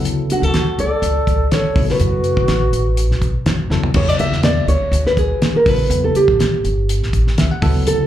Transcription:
Already playing: D2 C#3 F#3 B3 E4 A4
0.05 closed hi-hat
0.29 D4 F#4, muted upright bass stroke, closed hi-hat
0.42 D2 F#4 A4
0.54 snare, closed hi-hat
0.78 C#2 A4 D5, closed hi-hat
1.02 C#2, closed hi-hat
1.27 C#2, kick, closed hi-hat
1.52 A4 C#5, snare, closed hi-hat
1.65 muted upright bass stroke
1.76 B1 C#3 F#3 B3 E4 A4, kick, open hi-hat
1.89 F#4 B4, snare
2.00 F#2, closed hi-hat
2.24 closed hi-hat
2.37 B1, kick
2.48 A1, snare, closed hi-hat
2.73 A1, closed hi-hat
2.97 closed hi-hat
3.10 B1, snare
3.22 kick, closed hi-hat
3.46 F#2, snare, closed hi-hat
3.70 E2 C#3 F#3 B3 E4 A4, snare
3.83 floor tom
3.94 E2 C#3 F#3 B3 E4 G#4 C#5, kick, crash
4.09 D5
4.19 E5, muted upright bass stroke, closed hi-hat
4.32 E2, snare
4.43 D5, snare, closed hi-hat
4.67 D2 C#5, closed hi-hat
4.92 D2, closed hi-hat
5.06 B4, snare
5.17 D2 G#4, kick, closed hi-hat
5.42 snare, closed hi-hat
5.55 A#4, muted upright bass stroke
5.66 A1 C#3 F#3 B3 E4 A4 B4, kick, open hi-hat
5.90 E2, closed hi-hat
6.04 A4
6.15 G4, closed hi-hat
6.28 A1, kick
6.39 G1, snare, closed hi-hat
6.64 G1, closed hi-hat
6.89 closed hi-hat
7.02 A1, snare
7.13 kick, closed hi-hat
7.27 snare
7.38 C#2 E5, snare, closed hi-hat
7.51 F#5
7.62 D2 C#3 F#3 B3 E4 A4, kick, open hi-hat
7.87 A4, closed hi-hat

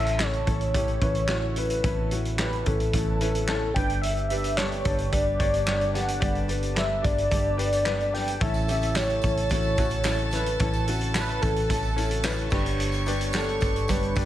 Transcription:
Already playing: A1 A2 C#3 E3 A3 C#4 E4 A4 E5
0.06 closed hi-hat
0.19 A3 C#4 E4 A4 C#5, snare, clap
0.33 closed hi-hat
0.46 A1 A3 C#4 E4 A4, kick, closed hi-hat
0.61 closed hi-hat
0.74 A2 E3 A3 C#4 E4 G4 A4 C#5, kick, closed hi-hat
0.88 closed hi-hat
1.01 A1 C#4 E4 B4, kick, closed hi-hat
1.15 closed hi-hat
1.28 A3 C#4 E4 F#4 A4, snare, clap
1.56 C#4 E4 B4, closed hi-hat
1.70 closed hi-hat
1.84 A1 A2 E3 A3 B3 C#4 E4 A4 B4, kick, closed hi-hat
2.11 A3 C#4 E4 F#4 A4, closed hi-hat
2.25 closed hi-hat
2.39 A3 C#4 E4 G4 A4 B4, snare, clap
2.53 closed hi-hat
2.66 A1 C#4 E4 A4 B4, kick, closed hi-hat
2.80 closed hi-hat
2.93 A1 A2 E3 A3 C#4 E4 A4, kick, closed hi-hat
3.21 C#4 E4 B4, closed hi-hat
3.35 closed hi-hat
3.48 A3 C#4 E4 A4, snare, clap
3.74 G1 G2 D3 G3 B3 D4 G4 B4 G5, kick, closed hi-hat
3.90 closed hi-hat
4.01 E5, closed hi-hat
4.17 closed hi-hat
4.28 D4 G4 B4 E5, closed hi-hat
4.44 closed hi-hat
4.57 G3 D4 G4 A4 B4 C#5, snare, clap
4.72 closed hi-hat
4.84 G1 D4 G4 A4 B4, kick, closed hi-hat
4.98 closed hi-hat
5.11 G3 D4 G4 B4 D5, kick, closed hi-hat
5.39 G1 D4 G4 C#5, kick, closed hi-hat
5.54 closed hi-hat
5.66 G3 D4 G4 B4 C#5, snare, clap
5.81 closed hi-hat
5.93 G2 D4 G4 A4 B4 D5 F#5, snare, closed hi-hat
6.08 closed hi-hat
6.20 G1 G3 D4 G4 B4 D5, kick, closed hi-hat
6.35 closed hi-hat
6.48 D4 G4 B4, closed hi-hat
6.63 closed hi-hat
6.75 G3 D4 G4 B4 E5, snare, clap
7.02 G1 D4 G4 D5, kick, closed hi-hat
7.18 closed hi-hat
7.30 G1 G3 D4 G4 A4 B4, kick, closed hi-hat
7.57 D4 G4 B4, closed hi-hat
7.72 closed hi-hat
7.85 G3 D4 G4 B4, snare, clap
8.00 closed hi-hat
8.13 D4 G4 B4 G5, snare, open hi-hat
8.28 closed hi-hat
8.40 A1 A2 C#3 E3 A3 C#4 E4 A4 E5 A5, kick, closed hi-hat
8.54 closed hi-hat, tambourine
8.68 C#4 E4 G4 A4 E5, closed hi-hat, tambourine
8.82 closed hi-hat, tambourine
8.95 A3 C#4 E4 G4 A4 C#5, snare, clap, tambourine
9.10 closed hi-hat
9.22 A1 C#4 E4 A4, kick, closed hi-hat, tambourine
9.37 closed hi-hat
9.49 A2 E3 A3 C#4 E4 F#4 A4 C#5, kick, closed hi-hat, tambourine
9.63 tambourine
9.77 A1 C#4 E4 F#4, kick, closed hi-hat, tambourine
9.90 closed hi-hat, tambourine
10.04 A3 C#4 E4 A4, snare, clap, tambourine
10.08 A4
10.19 closed hi-hat
10.31 C#4 E4 A4 B4, snare, closed hi-hat, tambourine
10.46 closed hi-hat
10.59 A1 A2 E3 A3 C#4 E4 F#4 A4, kick, closed hi-hat
10.73 closed hi-hat, tambourine
10.87 A3 C#4 E4 F#4 A4, closed hi-hat, tambourine
11.01 closed hi-hat
11.15 A3 C#4 E4 A4 B4, snare, clap, tambourine
11.29 closed hi-hat
11.42 A1 C#4 E4 A4 B4, kick, closed hi-hat, tambourine
11.56 closed hi-hat
11.69 A1 A2 E3 A3 C#4 E4 A4, kick, closed hi-hat, tambourine
11.83 tambourine
11.96 C#4 E4 A4, closed hi-hat, tambourine
12.11 closed hi-hat
12.23 A3 C#4 E4 A4 B4, snare, clap, tambourine
12.38 closed hi-hat
12.50 G1 G2 D3 G3 B3 D4 G4 B4 C#5 C#6, kick, snare, tambourine, crash
12.66 closed hi-hat
12.80 closed hi-hat
12.92 closed hi-hat, tambourine
13.06 G3 B3 D4 G4 B4, closed hi-hat, tambourine
13.21 closed hi-hat
13.33 G3 B3 D4 G4 A4 C#5, snare, clap, tambourine
13.49 closed hi-hat
13.61 G1 D4 G4 B4, kick, closed hi-hat, tambourine
13.76 closed hi-hat
13.88 G2 D3 G3 B3 D4 G4 A4 B4, kick, closed hi-hat, tambourine
14.03 closed hi-hat
14.15 G1 D4 G4 B4, kick, closed hi-hat, tambourine

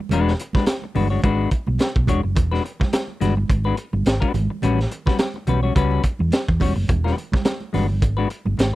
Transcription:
0.00 muted clean electric guitar stroke
0.09 E1 G#3 D4 F#4 B4, closed hi-hat, muted conga, low conga
0.28 snare
0.39 muted clean electric guitar stroke, closed hi-hat
0.53 D4 F#4 B4, muted fingered electric bass stroke, kick, snare, high conga
0.58 G#3
0.66 muted clean electric guitar stroke, snare, closed hi-hat, muted conga
0.82 muted clean electric guitar stroke, muted conga
0.95 G1 G#3 D4 F#4 B4, open hi-hat, low conga
1.10 G#3 D4 F#4 C#5, high conga
1.22 G#1 G#3 D4 F#4 B4, kick, closed hi-hat, muted conga
1.51 kick, closed hi-hat
1.67 B1, muted clean electric guitar stroke, high conga
1.78 muted clean electric guitar stroke, snare, closed hi-hat, muted conga
1.96 B1, kick, muted conga
2.07 E1 G#3 D4 F#4 C#5, kick, closed hi-hat, high conga, low conga
2.23 F#1, muted clean electric guitar stroke
2.35 E1, muted clean electric guitar stroke, kick, closed hi-hat, muted conga, low conga
2.51 G#3 D4 F#4 B4, snare, muted conga
2.65 muted clean electric guitar stroke, closed hi-hat
2.80 muted clean electric guitar stroke, muted fingered electric bass stroke, kick, snare, high conga
2.93 muted clean electric guitar stroke, snare, closed hi-hat
3.08 muted conga
3.21 G1 G#3 D4 F#4 B4, snare, closed hi-hat, low conga
3.37 muted clean electric guitar stroke, high conga
3.48 G#1, muted clean electric guitar stroke, kick, closed hi-hat, muted conga
3.64 G#3 D4 F#4 B4, muted conga
3.77 closed hi-hat
3.93 G1, muted clean electric guitar stroke, high conga
4.05 G#1, muted clean electric guitar stroke, snare, closed hi-hat, muted conga
4.20 G#3 D4 F#4 B4, kick, muted conga
4.34 G#1, closed hi-hat, high conga, low conga
4.50 muted clean electric guitar stroke
4.62 A1 G3 C#4 F#4 B4, closed hi-hat, low conga
4.79 snare, muted conga
4.91 muted clean electric guitar stroke, closed hi-hat
5.06 G3 C#4 F#4 B4, muted fingered electric bass stroke, kick, snare, high conga
5.18 muted clean electric guitar stroke, snare, closed hi-hat
5.34 muted clean electric guitar stroke, muted conga
5.47 B1 G3 C#4 F#4 B4, closed hi-hat, low conga
5.63 G3 C#4 F#4 C#5, high conga
5.75 C#2 G3 C#4 F#4 B4, kick, closed hi-hat
5.91 muted conga
6.03 muted clean electric guitar stroke, kick, closed hi-hat
6.19 E2, muted clean electric guitar stroke, high conga
6.31 muted clean electric guitar stroke, snare, closed hi-hat, muted conga
6.48 E2, kick
6.60 E1 G3 C#4 F#4 C#5, kick, open hi-hat, high conga, low conga
6.76 F#1, muted clean electric guitar stroke
6.88 E1, muted clean electric guitar stroke, kick, closed hi-hat, low conga
7.04 G#3 D4 F#4 B4, snare, muted conga
7.16 muted clean electric guitar stroke, closed hi-hat
7.32 muted clean electric guitar stroke, muted fingered electric bass stroke, kick, snare, high conga
7.45 muted clean electric guitar stroke, snare, closed hi-hat, muted conga
7.61 muted conga
7.73 G1 G#3 D4 F#4 B4, snare, open hi-hat, low conga
7.90 high conga
8.01 G#1, muted clean electric guitar stroke, kick, closed hi-hat, muted conga
8.17 G#3 D4 F#4 B4, muted conga
8.30 closed hi-hat
8.45 G1, muted clean electric guitar stroke, high conga
8.57 G#1, muted clean electric guitar stroke, snare, closed hi-hat, muted conga

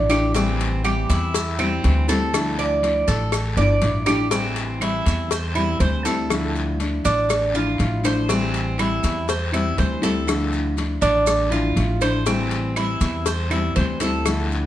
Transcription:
Already playing: A1
0.09 F3 A3 D4 E4 G4, cowbell, short guiro, claves, maracas
0.34 E3 G3 C4 E4, cowbell, long guiro, maracas
0.60 cowbell, maracas
0.83 E3 G3 C4 E4 G4, cowbell, short guiro, claves, maracas
1.09 E2 E4, cowbell, short guiro, maracas
1.34 muted nylon-string guitar stroke, cowbell, long guiro, maracas
1.59 G3 C4 E4, claves, maracas
1.83 D2 E3 G3 C4 E4, cowbell, short guiro, maracas
2.08 G3 C4 E4 A4, cowbell, short guiro, maracas
2.33 D3 F3 A3 D4 E4, cowbell, long guiro, claves, maracas
2.59 D5, maracas
2.82 F3 A3 D4 E4, cowbell, short guiro, maracas
3.08 A1 A4, cowbell, short guiro, maracas
3.32 muted nylon-string guitar stroke, cowbell, long guiro, claves, maracas
3.57 G1 F3 A3 D4 E4 D5, maracas
3.81 A1 F3 A3 D4 E4, cowbell, short guiro, maracas
4.06 F3 A3 D4 E4 G4, cowbell, short guiro, claves, maracas
4.30 E3 G3 C4 E4, cowbell, long guiro, maracas
4.56 cowbell, maracas
4.80 E3 G3 C4 E4, cowbell, short guiro, claves, maracas
5.06 E2, cowbell, short guiro, maracas
5.30 C5, muted nylon-string guitar stroke, cowbell, long guiro, maracas
5.55 G3 C4 E4, claves, maracas
5.79 D2 E3 G3 C4 E4 C5, cowbell, short guiro, maracas
6.05 G3 C4 E4 A4, cowbell, short guiro, maracas
6.30 D3 F3 A3 D4 E4, cowbell, long guiro, claves, maracas
6.56 maracas
6.79 F3 A3 D4 E4, cowbell, short guiro, maracas
7.04 A1 D4, cowbell, short guiro, maracas
7.29 muted nylon-string guitar stroke, cowbell, long guiro, claves, maracas
7.54 F3 A3 D4 E4 F4, maracas
7.78 A1 F3 A3 D4 E4, cowbell, short guiro, maracas
8.03 F3 A3 D4 E4 C5, cowbell, short guiro, claves, maracas
8.29 E3 G3 C4 E4, cowbell, long guiro, maracas
8.54 cowbell, maracas
8.78 E3 G3 C4 E4, cowbell, short guiro, claves, maracas
9.03 E2, cowbell, short guiro, maracas
9.28 C5, muted nylon-string guitar stroke, cowbell, long guiro, maracas
9.52 G3 C4 E4, claves, maracas
9.77 D2 E3 G3 C4 E4 C5, cowbell, short guiro, maracas
10.02 G3 C4 E4 A4, cowbell, short guiro, maracas
10.27 D3 F3 A3 D4 E4, cowbell, long guiro, claves, maracas
10.53 maracas
10.77 F3 A3 D4 E4, cowbell, short guiro, maracas
11.01 A1 D4, cowbell, short guiro, maracas
11.26 muted nylon-string guitar stroke, cowbell, long guiro, claves, maracas
11.50 F3 A3 D4 E4 F4, maracas
11.76 A1 F3 A3 D4 E4, cowbell, short guiro, maracas
12.01 F3 A3 D4 E4 C5, cowbell, short guiro, claves, maracas
12.25 E3 G3 C4 E4, cowbell, long guiro, maracas
12.51 cowbell, maracas
12.75 E3 G3 C4 E4, cowbell, short guiro, claves, maracas
13.01 E2, cowbell, short guiro, maracas
13.26 C5, muted nylon-string guitar stroke, cowbell, long guiro, maracas
13.50 G3 C4 E4, claves, maracas
13.76 D2 E3 G3 C4 E4 C5, cowbell, short guiro, maracas
14.00 G3 C4 E4 A4, cowbell, short guiro, maracas
14.26 D3 F3 A3 D4 E4, cowbell, long guiro, claves, maracas
14.52 maracas

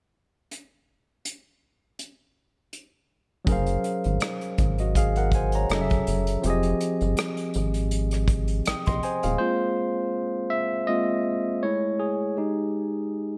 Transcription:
0.51 closed hi-hat
1.25 closed hi-hat
1.99 closed hi-hat
2.73 closed hi-hat
3.45 F#1 F#3 C#4 G#4, kick, closed hi-hat
3.49 A#4 C5 F5
3.66 closed hi-hat
3.84 closed hi-hat
4.04 G#1, closed hi-hat
4.20 cross-stick, closed hi-hat
4.41 closed hi-hat
4.58 G#1, kick, closed hi-hat
4.78 F#4 D#5, closed hi-hat
4.95 G#4 F5, kick, closed hi-hat
5.16 A#4 F#5, closed hi-hat
5.32 G#5, kick, closed hi-hat
5.36 C5
5.52 C#5 A#5, closed hi-hat
5.69 F#1 F#3 C#4 G#4, cross-stick, closed hi-hat
5.74 A4 D#5
5.81 E5
5.90 kick, closed hi-hat
6.07 F#1, closed hi-hat
6.27 closed hi-hat
6.42 F1 F3 C4 G4, closed hi-hat
6.47 G#4 D#5
6.63 closed hi-hat
6.80 closed hi-hat
7.01 G1, closed hi-hat
7.17 cross-stick, closed hi-hat
7.37 closed hi-hat
7.54 G#1, closed hi-hat
7.74 closed hi-hat
7.91 closed hi-hat
8.11 cross-stick, closed hi-hat
8.28 kick, cross-stick, closed hi-hat
8.48 closed hi-hat
8.65 A#1 G5 D#6, cross-stick, closed hi-hat
8.86 A#1 D#5 C6, kick, closed hi-hat
9.03 C5 G#5, closed hi-hat
9.23 D#1 G#4 F5, closed hi-hat
9.38 G#3 A#3 C4 F4 C5
10.50 E5
10.87 G#3 A#3 C4 F4 D#5
11.63 G#3 A3 E4 C#5
12.00 G#4
12.37 G#3 D#4 G4

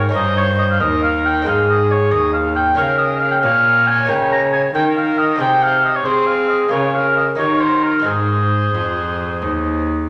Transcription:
Already playing: G#2 A#4
0.09 C#4 D#4 A#4
0.14 G2 C5 D#5
0.37 C#5
0.58 D#5
0.71 F5
0.80 D#2 A#4 D#5
1.03 F5
1.25 G5
1.42 C4 D#4 G#4 C5
1.46 G#2 F5
1.69 D#5
1.91 C#5
2.11 D#2 D#5
2.33 F5
2.56 G5
2.75 C#3 A#3 C#4 A#4 C#5 F5
2.98 D#5
3.20 F5
3.31 G5
3.41 A#2 C#5 F5
3.87 G#5
4.05 C#3 A#3 D#4 A#4
4.10 C#3 G5
4.32 A#5
4.53 G#5
4.73 D#3 A#4 G5
4.96 F5
5.18 D#5
5.36 C4 D#4 G#4
5.40 C3 C5 G5
5.63 F5
5.84 D#5
5.96 C#5
6.05 C4 G#4 C5
6.27 F5
6.49 D#5
6.68 A#3 F4 A#4 C#5
6.72 C#3 A#4
6.94 F5
7.16 D#5
7.35 A#3 D#4 G4 C#5
7.39 D#3 A#4
7.60 C5
7.83 A#4
8.00 G#3 C4 D#4
8.04 G#2 G#4 C5
8.75 F2
9.42 D#2

